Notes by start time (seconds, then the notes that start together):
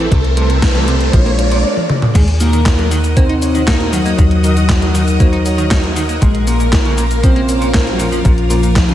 Already playing: C4 A4 E5, riser
0.11 C2 C3 G3 E4, kick, closed hi-hat
0.24 closed hi-hat
0.37 C3 G3 A3 C4 E4 A4, closed hi-hat
0.50 C3, closed hi-hat
0.62 kick, snare, closed hi-hat
0.75 E3 G3 A3 C4 E4 A4, closed hi-hat
0.88 C3, closed hi-hat
1.01 closed hi-hat
1.13 A#1 F3 G#3 A#3 D4 F4 A#4 C5 D5, kick, closed hi-hat
1.26 A#3, closed hi-hat
1.39 G#3 A#3 D4 F4 D5, closed hi-hat
1.51 A#2, closed hi-hat
1.77 high tom
1.90 mid tom
2.02 mid tom
2.15 D#2 D#3 G#3 G#4 A#4 D#5 F#5 D#6, kick, closed hi-hat, crash, shaker
2.28 closed hi-hat
2.40 D#3 A#3 D#4 F#4 A#4, open hi-hat, shaker
2.53 D#3, closed hi-hat, shaker
2.66 kick, snare, clap, closed hi-hat, shaker
2.78 F#3 D#4 F#4 A#4, closed hi-hat
2.91 D#3, open hi-hat, shaker
3.04 closed hi-hat, shaker
3.16 A#3 C4 D#4 F#4 C5, kick, closed hi-hat, shaker
3.29 D#4, closed hi-hat
3.42 D#4 F#4 C#5, open hi-hat, shaker
3.55 D#3, closed hi-hat, shaker
3.67 A#3 D#4 A#4, kick, snare, clap, closed hi-hat, shaker
3.80 D#4 F#4 C5, closed hi-hat
3.92 D#3 F#3 F#4, open hi-hat, shaker
4.05 A#3, closed hi-hat, shaker
4.18 D#2 D#3, kick, closed hi-hat, shaker
4.31 closed hi-hat
4.44 D#3 D#4 F#4 A#4, open hi-hat, shaker
4.56 D#3, closed hi-hat, shaker
4.69 kick, snare, clap, closed hi-hat, shaker
4.82 F#3 D#4 F#4 A#4, closed hi-hat
4.94 D#3, open hi-hat, shaker
5.08 closed hi-hat, shaker
5.20 A#3 D#4 F#4 C5, kick, closed hi-hat, shaker
5.33 D#4, closed hi-hat
5.46 D#4 F#4 C#5, open hi-hat, shaker
5.58 D#3, closed hi-hat, shaker
5.71 D#4, kick, snare, clap, closed hi-hat, shaker
5.84 D#4 F#4 C5, closed hi-hat
5.96 D#3, open hi-hat, shaker
6.09 A#3, closed hi-hat, shaker
6.22 A#1 A#2 G#3 A#3 G#4 F5, kick, closed hi-hat, shaker
6.35 closed hi-hat
6.47 A#2 A#3 C#4 F4 A#4, open hi-hat, shaker
6.60 A#2, closed hi-hat, shaker
6.73 kick, snare, clap, closed hi-hat, shaker
6.85 C#3 C#4 F4 A#4, closed hi-hat
6.98 A#2, open hi-hat, shaker
7.11 closed hi-hat, shaker
7.23 F3 C4 C#4 F4 C5, kick, closed hi-hat, shaker
7.36 A#3, closed hi-hat
7.49 C#4 F4 C#5, open hi-hat, shaker
7.61 A#2, closed hi-hat, shaker
7.74 A#3 A#4, kick, snare, clap, closed hi-hat, shaker
7.87 C#4 F4 C5, closed hi-hat
7.93 F#3 F#4
7.99 A#2 F3 F4, open hi-hat, shaker
8.12 F3, closed hi-hat, shaker
8.25 A#1 A#2, kick, closed hi-hat, shaker
8.38 closed hi-hat
8.50 A#2 C#4 F4 A#4, open hi-hat, shaker
8.63 A#2, closed hi-hat, shaker
8.76 kick, snare, clap, closed hi-hat, shaker
8.88 C#3 C#4 F4 A#4, closed hi-hat